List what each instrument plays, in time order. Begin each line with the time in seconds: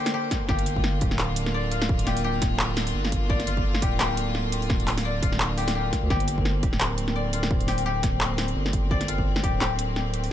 Already playing: string section D3 A#3 C5, koto F4 G4 D5
0.06 snare, open hi-hat
0.14 koto G4
0.31 kick, snare, closed hi-hat
0.49 sub bass G1, string section F4, koto G4, kick, snare
0.59 closed hi-hat
0.66 closed hi-hat
0.76 kick
0.84 snare
1.01 sub bass D1, kick, closed hi-hat
1.11 snare
1.19 clap, open hi-hat
1.36 closed hi-hat
1.46 snare
1.54 koto D5
1.72 koto F4, closed hi-hat
1.82 snare, open hi-hat
1.89 kick
1.99 closed hi-hat
2.07 koto G4, snare, open hi-hat
2.17 open hi-hat
2.24 koto G4
2.42 sub bass D1, kick, snare, closed hi-hat
2.59 clap
2.77 snare, open hi-hat
2.87 open hi-hat
2.94 sub bass G1
3.05 snare
3.12 kick, closed hi-hat
3.30 koto D5, kick
3.40 snare, closed hi-hat
3.47 koto F4, closed hi-hat
3.57 kick
3.75 snare
3.82 sub bass D1, koto G4, kick, closed hi-hat
4.00 koto G4, clap, snare, open hi-hat
4.17 closed hi-hat
4.35 snare
4.52 closed hi-hat
4.62 open hi-hat
4.70 kick, snare
4.80 closed hi-hat
4.88 clap, open hi-hat
4.98 snare, open hi-hat
5.05 koto D5
5.23 sub bass D1, koto F4, kick, closed hi-hat
5.32 snare
5.40 clap
5.58 koto G4, open hi-hat
5.68 snare, open hi-hat
5.75 koto G4
5.93 kick, snare, closed hi-hat
6.03 sub bass D2
6.10 sub bass G1, string section C4, koto G4, kick, snare
6.20 closed hi-hat
6.28 closed hi-hat
6.38 kick
6.45 snare
6.63 sub bass D1, kick, closed hi-hat
6.73 snare
6.80 clap, open hi-hat
6.98 closed hi-hat
7.08 snare
7.16 koto D5
7.33 koto F4, closed hi-hat
7.43 snare, open hi-hat
7.51 kick
7.61 closed hi-hat
7.68 koto G4, snare, open hi-hat
7.78 open hi-hat
7.86 koto G4
8.03 sub bass D1, kick, snare, closed hi-hat
8.21 clap
8.38 snare, open hi-hat
8.48 open hi-hat
8.56 sub bass G1
8.66 snare
8.73 kick, closed hi-hat
8.91 koto D5, kick
9.01 snare, closed hi-hat
9.08 koto F4, closed hi-hat
9.18 kick
9.36 snare
9.44 sub bass D1, koto G4, kick, closed hi-hat
9.61 koto G4, clap, snare, open hi-hat
9.79 closed hi-hat
9.96 snare
10.14 closed hi-hat
10.24 open hi-hat